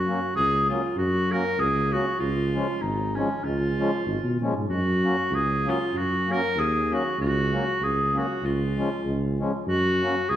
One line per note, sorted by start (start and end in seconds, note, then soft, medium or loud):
0.00 0.13 F#2 medium
0.00 0.31 F#4 medium
0.07 0.20 F#3 soft
0.07 0.20 A#3 soft
0.07 0.20 C#4 medium
0.35 0.75 C#2 medium
0.35 0.67 G#4 medium
0.69 0.81 F#3 soft
0.69 0.82 A#3 soft
0.69 0.82 C#4 medium
0.69 0.95 F4 medium
0.96 1.36 F#2 medium
0.96 1.33 F#4 medium
1.31 1.43 F#3 soft
1.31 1.44 A#3 soft
1.31 1.44 C#4 medium
1.31 1.61 A#4 medium
1.58 1.99 C#2 medium
1.58 1.94 G#4 medium
1.92 2.05 F#3 soft
1.92 2.05 A#3 soft
1.92 2.05 C#4 soft
1.92 2.19 F#4 medium
2.20 2.60 C#2 medium
2.20 2.83 F4 medium
2.54 2.67 F3 soft
2.54 2.67 G#3 soft
2.54 2.67 C#4 medium
2.81 3.22 G#1 medium
2.81 3.17 D#4 medium
3.15 3.29 F3 soft
3.15 3.29 G#3 soft
3.15 3.46 C#4 medium
3.15 3.29 C#4 medium
3.43 3.84 C#2 medium
3.43 4.41 F4 medium
3.78 3.91 F3 soft
3.78 3.91 G#3 soft
3.78 3.91 C#4 medium
4.05 4.17 G#1 medium
4.24 4.39 B2 medium
4.40 4.53 A#2 medium
4.40 4.54 F3 medium
4.40 4.54 G#3 soft
4.40 4.54 C#4 medium
4.54 4.67 G#2 medium
4.69 5.10 F#2 medium
4.69 5.36 F#4 medium
5.03 5.16 F#3 medium
5.03 5.16 A#3 soft
5.03 5.16 C#4 medium
5.31 5.72 C#2 medium
5.31 5.70 G#4 medium
5.65 5.78 F#3 soft
5.65 5.78 A#3 soft
5.65 5.79 C#4 medium
5.65 5.99 F4 medium
5.93 6.34 F#2 medium
5.93 6.33 F#4 medium
6.27 6.41 F#3 soft
6.27 6.41 A#3 soft
6.27 6.41 C#4 medium
6.32 6.61 A#4 medium
6.56 6.96 D#2 medium
6.56 6.95 G#4 medium
6.90 7.03 F#3 soft
6.90 7.03 A#3 soft
6.90 7.03 C#4 medium
6.90 7.20 F#4 medium
7.18 7.58 C#2 medium
7.18 7.85 F#4 medium
7.51 7.64 F#3 soft
7.51 7.64 A#3 soft
7.51 7.65 C#4 medium
7.80 8.21 C#2 medium
7.80 8.19 G#4 medium
8.13 8.26 F#3 soft
8.13 8.26 A#3 medium
8.13 8.27 C#4 medium
8.18 8.47 F#4 medium
8.42 8.83 C#2 medium
8.42 9.41 F4 medium
8.77 8.89 F3 medium
8.77 8.90 G#3 soft
8.77 8.90 C#4 soft
9.04 9.45 C#2 medium
9.39 9.52 F3 medium
9.39 9.52 G#3 medium
9.39 9.52 C#4 medium
9.67 10.08 F#2 medium
9.67 10.30 F#4 medium
10.02 10.15 F#3 soft
10.02 10.15 A#3 soft
10.02 10.15 C#4 medium
10.29 10.36 C#2 medium
10.29 10.36 G#4 medium